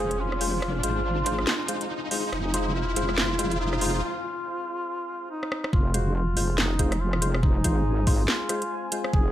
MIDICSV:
0, 0, Header, 1, 7, 480
1, 0, Start_track
1, 0, Key_signature, -4, "minor"
1, 0, Tempo, 425532
1, 704, Time_signature, 4, 2, 24, 8
1, 10511, End_track
2, 0, Start_track
2, 0, Title_t, "Ambient pad"
2, 0, Program_c, 0, 92
2, 0, Note_on_c, 0, 72, 69
2, 0, Note_on_c, 0, 77, 75
2, 0, Note_on_c, 0, 80, 87
2, 4495, Note_off_c, 0, 72, 0
2, 4496, Note_off_c, 0, 77, 0
2, 4496, Note_off_c, 0, 80, 0
2, 6459, Note_on_c, 0, 68, 78
2, 6459, Note_on_c, 0, 80, 87
2, 6461, Note_on_c, 0, 72, 74
2, 10511, Note_off_c, 0, 68, 0
2, 10511, Note_off_c, 0, 72, 0
2, 10511, Note_off_c, 0, 80, 0
2, 10511, End_track
3, 0, Start_track
3, 0, Title_t, "Duduk"
3, 0, Program_c, 1, 69
3, 0, Note_on_c, 1, 68, 117
3, 223, Note_on_c, 1, 65, 105
3, 240, Note_off_c, 1, 68, 0
3, 696, Note_off_c, 1, 65, 0
3, 703, Note_on_c, 1, 65, 121
3, 2338, Note_off_c, 1, 65, 0
3, 2621, Note_on_c, 1, 63, 101
3, 3101, Note_on_c, 1, 65, 98
3, 3118, Note_off_c, 1, 63, 0
3, 3575, Note_off_c, 1, 65, 0
3, 3582, Note_on_c, 1, 65, 100
3, 4065, Note_on_c, 1, 63, 94
3, 4082, Note_off_c, 1, 65, 0
3, 4535, Note_off_c, 1, 63, 0
3, 4542, Note_on_c, 1, 65, 102
3, 5938, Note_off_c, 1, 65, 0
3, 5983, Note_on_c, 1, 63, 94
3, 6430, Note_off_c, 1, 63, 0
3, 6461, Note_on_c, 1, 65, 100
3, 6700, Note_on_c, 1, 66, 93
3, 6717, Note_off_c, 1, 65, 0
3, 6941, Note_on_c, 1, 65, 100
3, 6958, Note_off_c, 1, 66, 0
3, 7422, Note_on_c, 1, 63, 97
3, 7439, Note_off_c, 1, 65, 0
3, 7900, Note_on_c, 1, 65, 103
3, 7917, Note_off_c, 1, 63, 0
3, 8374, Note_off_c, 1, 65, 0
3, 8381, Note_on_c, 1, 63, 110
3, 9341, Note_on_c, 1, 65, 114
3, 9358, Note_off_c, 1, 63, 0
3, 10063, Note_off_c, 1, 65, 0
3, 10301, Note_on_c, 1, 68, 116
3, 10511, Note_off_c, 1, 68, 0
3, 10511, End_track
4, 0, Start_track
4, 0, Title_t, "Synth stab"
4, 0, Program_c, 2, 62
4, 0, Note_on_c, 2, 56, 88
4, 0, Note_on_c, 2, 65, 79
4, 0, Note_on_c, 2, 72, 98
4, 201, Note_off_c, 2, 56, 0
4, 201, Note_off_c, 2, 65, 0
4, 202, Note_off_c, 2, 72, 0
4, 460, Note_on_c, 2, 56, 78
4, 460, Note_on_c, 2, 65, 74
4, 461, Note_on_c, 2, 72, 89
4, 680, Note_off_c, 2, 56, 0
4, 681, Note_off_c, 2, 65, 0
4, 681, Note_off_c, 2, 72, 0
4, 942, Note_on_c, 2, 56, 92
4, 943, Note_on_c, 2, 65, 85
4, 943, Note_on_c, 2, 72, 105
4, 1162, Note_off_c, 2, 56, 0
4, 1162, Note_off_c, 2, 65, 0
4, 1162, Note_off_c, 2, 72, 0
4, 1423, Note_on_c, 2, 56, 75
4, 1423, Note_on_c, 2, 72, 87
4, 1424, Note_on_c, 2, 65, 74
4, 1642, Note_off_c, 2, 56, 0
4, 1642, Note_off_c, 2, 65, 0
4, 1642, Note_off_c, 2, 72, 0
4, 1899, Note_on_c, 2, 56, 93
4, 1900, Note_on_c, 2, 65, 84
4, 1900, Note_on_c, 2, 72, 99
4, 2120, Note_off_c, 2, 56, 0
4, 2120, Note_off_c, 2, 72, 0
4, 2121, Note_off_c, 2, 65, 0
4, 2382, Note_on_c, 2, 72, 88
4, 2383, Note_on_c, 2, 56, 83
4, 2383, Note_on_c, 2, 65, 77
4, 2602, Note_off_c, 2, 56, 0
4, 2602, Note_off_c, 2, 65, 0
4, 2602, Note_off_c, 2, 72, 0
4, 2863, Note_on_c, 2, 56, 98
4, 2863, Note_on_c, 2, 65, 90
4, 2863, Note_on_c, 2, 72, 108
4, 3082, Note_off_c, 2, 56, 0
4, 3082, Note_off_c, 2, 65, 0
4, 3082, Note_off_c, 2, 72, 0
4, 3342, Note_on_c, 2, 56, 92
4, 3342, Note_on_c, 2, 65, 85
4, 3342, Note_on_c, 2, 72, 105
4, 3561, Note_off_c, 2, 56, 0
4, 3561, Note_off_c, 2, 72, 0
4, 3562, Note_off_c, 2, 65, 0
4, 3821, Note_on_c, 2, 56, 93
4, 3821, Note_on_c, 2, 65, 86
4, 3821, Note_on_c, 2, 72, 104
4, 4041, Note_off_c, 2, 56, 0
4, 4041, Note_off_c, 2, 65, 0
4, 4041, Note_off_c, 2, 72, 0
4, 4304, Note_on_c, 2, 56, 97
4, 4304, Note_on_c, 2, 65, 91
4, 4304, Note_on_c, 2, 72, 112
4, 4522, Note_off_c, 2, 56, 0
4, 4522, Note_off_c, 2, 72, 0
4, 4523, Note_off_c, 2, 65, 0
4, 6701, Note_on_c, 2, 56, 97
4, 6702, Note_on_c, 2, 65, 91
4, 6702, Note_on_c, 2, 72, 109
4, 6921, Note_off_c, 2, 56, 0
4, 6921, Note_off_c, 2, 72, 0
4, 6922, Note_off_c, 2, 65, 0
4, 7182, Note_on_c, 2, 72, 89
4, 7183, Note_on_c, 2, 56, 81
4, 7183, Note_on_c, 2, 65, 74
4, 7402, Note_off_c, 2, 56, 0
4, 7402, Note_off_c, 2, 65, 0
4, 7402, Note_off_c, 2, 72, 0
4, 7661, Note_on_c, 2, 72, 110
4, 7662, Note_on_c, 2, 65, 89
4, 7663, Note_on_c, 2, 56, 98
4, 7815, Note_off_c, 2, 65, 0
4, 7815, Note_off_c, 2, 72, 0
4, 7816, Note_off_c, 2, 56, 0
4, 8140, Note_on_c, 2, 56, 78
4, 8140, Note_on_c, 2, 72, 89
4, 8141, Note_on_c, 2, 65, 75
4, 8360, Note_off_c, 2, 72, 0
4, 8361, Note_off_c, 2, 56, 0
4, 8361, Note_off_c, 2, 65, 0
4, 8621, Note_on_c, 2, 65, 91
4, 8621, Note_on_c, 2, 72, 107
4, 8622, Note_on_c, 2, 56, 100
4, 8841, Note_off_c, 2, 56, 0
4, 8841, Note_off_c, 2, 65, 0
4, 8841, Note_off_c, 2, 72, 0
4, 9102, Note_on_c, 2, 56, 82
4, 9102, Note_on_c, 2, 65, 78
4, 9102, Note_on_c, 2, 72, 92
4, 9321, Note_off_c, 2, 56, 0
4, 9321, Note_off_c, 2, 65, 0
4, 9322, Note_off_c, 2, 72, 0
4, 9582, Note_on_c, 2, 65, 90
4, 9582, Note_on_c, 2, 72, 110
4, 9583, Note_on_c, 2, 56, 93
4, 9735, Note_off_c, 2, 65, 0
4, 9736, Note_off_c, 2, 56, 0
4, 9736, Note_off_c, 2, 72, 0
4, 10063, Note_on_c, 2, 56, 80
4, 10064, Note_on_c, 2, 65, 73
4, 10064, Note_on_c, 2, 72, 91
4, 10282, Note_off_c, 2, 56, 0
4, 10282, Note_off_c, 2, 65, 0
4, 10282, Note_off_c, 2, 72, 0
4, 10511, End_track
5, 0, Start_track
5, 0, Title_t, "Wobble bass"
5, 0, Program_c, 3, 39
5, 0, Note_on_c, 3, 29, 98
5, 928, Note_off_c, 3, 29, 0
5, 941, Note_on_c, 3, 32, 94
5, 1647, Note_off_c, 3, 32, 0
5, 2625, Note_on_c, 3, 29, 100
5, 3329, Note_off_c, 3, 29, 0
5, 3343, Note_on_c, 3, 29, 99
5, 4543, Note_off_c, 3, 29, 0
5, 6465, Note_on_c, 3, 29, 101
5, 7169, Note_off_c, 3, 29, 0
5, 7182, Note_on_c, 3, 29, 98
5, 8607, Note_off_c, 3, 29, 0
5, 8622, Note_on_c, 3, 32, 95
5, 9327, Note_off_c, 3, 32, 0
5, 10304, Note_on_c, 3, 29, 102
5, 10511, Note_off_c, 3, 29, 0
5, 10511, End_track
6, 0, Start_track
6, 0, Title_t, "Riser"
6, 0, Program_c, 4, 103
6, 0, Note_on_c, 4, 60, 74
6, 4544, Note_off_c, 4, 60, 0
6, 10511, End_track
7, 0, Start_track
7, 0, Title_t, "Drums"
7, 124, Note_on_c, 9, 42, 35
7, 237, Note_off_c, 9, 42, 0
7, 363, Note_on_c, 9, 37, 55
7, 460, Note_on_c, 9, 46, 90
7, 476, Note_off_c, 9, 37, 0
7, 573, Note_off_c, 9, 46, 0
7, 702, Note_on_c, 9, 37, 55
7, 704, Note_on_c, 9, 36, 112
7, 814, Note_off_c, 9, 37, 0
7, 817, Note_off_c, 9, 36, 0
7, 941, Note_on_c, 9, 42, 74
7, 1054, Note_off_c, 9, 42, 0
7, 1421, Note_on_c, 9, 42, 72
7, 1424, Note_on_c, 9, 36, 102
7, 1534, Note_off_c, 9, 42, 0
7, 1537, Note_off_c, 9, 36, 0
7, 1562, Note_on_c, 9, 37, 55
7, 1659, Note_on_c, 9, 38, 116
7, 1675, Note_off_c, 9, 37, 0
7, 1772, Note_off_c, 9, 38, 0
7, 1900, Note_on_c, 9, 42, 74
7, 2013, Note_off_c, 9, 42, 0
7, 2042, Note_on_c, 9, 42, 35
7, 2154, Note_off_c, 9, 42, 0
7, 2382, Note_on_c, 9, 46, 95
7, 2494, Note_off_c, 9, 46, 0
7, 2623, Note_on_c, 9, 37, 56
7, 2625, Note_on_c, 9, 36, 111
7, 2735, Note_off_c, 9, 37, 0
7, 2737, Note_off_c, 9, 36, 0
7, 2863, Note_on_c, 9, 42, 77
7, 2975, Note_off_c, 9, 42, 0
7, 3343, Note_on_c, 9, 42, 77
7, 3456, Note_off_c, 9, 42, 0
7, 3483, Note_on_c, 9, 37, 55
7, 3584, Note_on_c, 9, 38, 118
7, 3596, Note_off_c, 9, 37, 0
7, 3697, Note_off_c, 9, 38, 0
7, 3824, Note_on_c, 9, 42, 76
7, 3825, Note_on_c, 9, 36, 58
7, 3937, Note_off_c, 9, 42, 0
7, 3938, Note_off_c, 9, 36, 0
7, 3965, Note_on_c, 9, 42, 35
7, 4078, Note_off_c, 9, 42, 0
7, 4205, Note_on_c, 9, 37, 56
7, 4302, Note_on_c, 9, 46, 97
7, 4318, Note_off_c, 9, 37, 0
7, 4415, Note_off_c, 9, 46, 0
7, 6124, Note_on_c, 9, 37, 55
7, 6224, Note_off_c, 9, 37, 0
7, 6224, Note_on_c, 9, 37, 80
7, 6337, Note_off_c, 9, 37, 0
7, 6365, Note_on_c, 9, 37, 83
7, 6465, Note_on_c, 9, 36, 121
7, 6478, Note_off_c, 9, 37, 0
7, 6578, Note_off_c, 9, 36, 0
7, 6703, Note_on_c, 9, 42, 82
7, 6815, Note_off_c, 9, 42, 0
7, 7182, Note_on_c, 9, 46, 93
7, 7294, Note_off_c, 9, 46, 0
7, 7423, Note_on_c, 9, 38, 120
7, 7536, Note_off_c, 9, 38, 0
7, 7661, Note_on_c, 9, 42, 87
7, 7663, Note_on_c, 9, 36, 62
7, 7774, Note_off_c, 9, 42, 0
7, 7776, Note_off_c, 9, 36, 0
7, 7805, Note_on_c, 9, 37, 79
7, 7805, Note_on_c, 9, 42, 39
7, 7918, Note_off_c, 9, 37, 0
7, 7918, Note_off_c, 9, 42, 0
7, 8044, Note_on_c, 9, 37, 81
7, 8144, Note_on_c, 9, 42, 84
7, 8157, Note_off_c, 9, 37, 0
7, 8257, Note_off_c, 9, 42, 0
7, 8284, Note_on_c, 9, 37, 80
7, 8383, Note_on_c, 9, 36, 125
7, 8397, Note_off_c, 9, 37, 0
7, 8495, Note_off_c, 9, 36, 0
7, 8622, Note_on_c, 9, 42, 86
7, 8623, Note_on_c, 9, 36, 64
7, 8734, Note_off_c, 9, 42, 0
7, 8736, Note_off_c, 9, 36, 0
7, 9102, Note_on_c, 9, 46, 93
7, 9103, Note_on_c, 9, 36, 114
7, 9215, Note_off_c, 9, 46, 0
7, 9216, Note_off_c, 9, 36, 0
7, 9342, Note_on_c, 9, 38, 127
7, 9454, Note_off_c, 9, 38, 0
7, 9580, Note_on_c, 9, 37, 49
7, 9580, Note_on_c, 9, 42, 82
7, 9693, Note_off_c, 9, 37, 0
7, 9693, Note_off_c, 9, 42, 0
7, 9721, Note_on_c, 9, 42, 39
7, 9834, Note_off_c, 9, 42, 0
7, 10060, Note_on_c, 9, 42, 84
7, 10173, Note_off_c, 9, 42, 0
7, 10202, Note_on_c, 9, 37, 76
7, 10304, Note_on_c, 9, 36, 125
7, 10314, Note_off_c, 9, 37, 0
7, 10417, Note_off_c, 9, 36, 0
7, 10511, End_track
0, 0, End_of_file